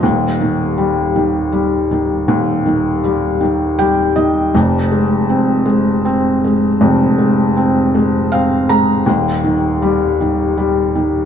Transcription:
\new Staff \with { instrumentName = "Felt piano" } { \clef bass \time 6/8 \key ees \mixolydian \tempo 4. = 53 <ees,, ees,>8 ees8 g8 ees8 g8 ees8 | <ees,, ees,>8 ees8 g8 ees8 <g g''>8 <ees ees''>8 | <f,, f,>8 aes8 c'8 aes8 c'8 aes8 | <f,, f,>8 aes8 c'8 aes8 <c' f''>8 <aes bes''>8 |
<ees,, ees,>8 ees8 g8 ees8 g8 ees8 | }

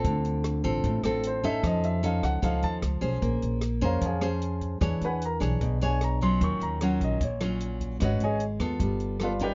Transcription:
<<
  \new Staff \with { instrumentName = "Grand piano" } { \time 4/4 \key f \major \tempo 4 = 151 r2 r8 a'8 c''8 e''8 | ees''8 e''8 f''8 fis''8 f''8 a''8 r4 | \key ees \dorian r4. <bes' des'' f'' bes''>8 <aes' des'' f'' aes''>8 r4. | r8 <b' fis'' gis'' b''>8 <bes' bes''>8 r4 gis''8 bes''8 c'''8 |
des'''8 bes''8 ges''8 ees''8 des''4 r4 | <ges' des'' ees'' ges''>8 <aes' des'' ees'' aes''>8 r2 <f' b' d'' f''>8 <g' b' d'' g''>8 | }
  \new Staff \with { instrumentName = "Nylon-string guitar" } { \time 4/4 \key f \major << { <c' f' a'>4. <c' f' a'>4 <c' f' a'>4 <cis' ees' a'>8~ | <cis' ees' a'>4 <cis' ees' a'>4 <cis' ees' a'>4 r8 <cis' gis' c''>8~ | \key ees \dorian <cis' gis' c''>4 r8 <des' aes' c''>4 <des' aes' c''>4. | <d' gis' cis''>4 r8 <d' gis' cis''>4 <d' gis' cis''>4 <fis cis' f'>8~ |
<fis cis' f'>4 <ges des' f'>4 r8 <ges des' f'>4. | <des' ges' ces''>4 r8 <ces' f' a'>4. <b f' a'>8 <des' ees' bes'>8 | } \\ { d2 a,2 | f2 f2 | bes2 f2 | e2 b,2 |
ees2 bes,2 | aes2 g2 | } >> }
  \new Staff \with { instrumentName = "Upright bass" } { \clef bass \time 4/4 \key f \major d,4. a,,8 a,,8 a,,4. | f,4. cis,8 cis,8 ees,8 cis,8 b,,8 | \key ees \dorian bes,,8 bes,,4 f,8 f,2 | e,8 e,4 b,,8 b,,2 |
ees,8 ees,4 bes,,8 bes,,2 | aes,,8 aes,,4 ees,8 g,,2 | }
  \new DrumStaff \with { instrumentName = "Drums" } \drummode { \time 4/4 <hh bd>8 hh8 <hh ss>8 <hh bd>8 <hh bd>8 <hh ss>8 hh8 <hh bd>8 | <hh bd ss>8 hh8 hh8 <hh bd ss>8 <hh bd>8 hh8 <hh ss>8 <hh bd>8 | <hh bd>8 hh8 <hh ss>8 <hh bd>8 <hh bd>8 <hh ss>8 hh8 <hh bd>8 | <hh bd ss>8 hh8 hh8 <hh bd ss>8 <hh bd>8 hh8 <hh ss>8 <hh bd>8 |
<hh bd>8 hh8 <hh ss>8 <hh bd>8 <hh bd>8 <hh ss>8 hh8 <hh bd>8 | <hh bd ss>8 hh8 hh8 <hh bd ss>8 <hh bd>8 hh8 <hh ss>8 <hh bd>8 | }
>>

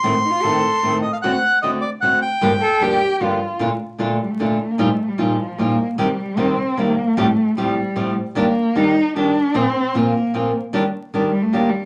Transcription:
<<
  \new Staff \with { instrumentName = "Bandoneon" } { \time 3/4 \key g \minor \tempo 4 = 152 c'''2~ c'''8 ees''16 f''16 | fis''4 ees''8 d''8 fis''8 g''8~ | g''2 r4 | \key bes \major r2. |
r2. | r2. | r2. | r2. |
r2. | r2. | }
  \new Staff \with { instrumentName = "Cello" } { \time 3/4 \key g \minor \tuplet 3/2 { r8. ees'16 f'8 } a'4~ a'16 r8. | r2. | r8 a'8 g'4 f'4 | \key bes \major r4. g16 a4 bes16 |
a8. g16 f4 bes8. r16 | g4 c'4 bes4 | a4 g4. r8 | bes4 ees'4 d'4 |
c'4 bes4. r8 | r4. g16 a16 bes8 g8 | }
  \new Staff \with { instrumentName = "Nylon-string guitar" } { \clef bass \time 3/4 \key g \minor <a, ees a c'>8 r8 <a, ees a c'>8 r8 <a, ees a c'>8 r8 | <d a c' fis'>8 r8 <d a c' fis'>8 r8 <d a c' fis'>8 r8 | <g, d f bes d' g'>8 r8 <g, d f bes d' g'>8 r8 <g, d f bes d' g'>8 r8 | \key bes \major <bes, d a d' f'>8 r8 <bes, d a d' f'>8 r8 <bes, d a d' f'>8 r8 |
<bes, f g ees' f'>8 r8 <bes, f g ees' f'>8 r8 <bes, f g ees' f'>8 r8 | <c ees g c' g'>8 r8 <c ees g c' g'>8 r8 <c ees g c' g'>8 r8 | <f, a, f g c' g'>8 r8 <f, a, f g c' g'>8 r8 <f, a, f g c' g'>8 r8 | <ees g d' g'>8 r8 <ees g d' g'>8 r8 <ees g d' g'>8 r8 |
<bes, f bes c' f'>8 r8 <bes, f bes c' f'>8 r8 <bes, f bes c' f'>8 r8 | <ees g d' g'>8 r8 <ees g d' g'>8 r8 <ees g d' g'>8 r8 | }
>>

